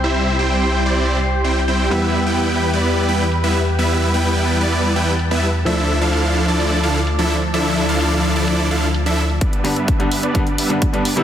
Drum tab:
HH |x-xxx--xx-xxxxxx|xxxxxx-xxxxxxxxx|xxxxxx-xxxxxxxxx|xxxxxx-xxxxxxxxx|
BD |----------------|----------------|----------------|----------------|

HH |xxxxxxxxxxxxxxxx|xxoxxxoxxxoxxxox|
BD |----------------|o---o---o---o---|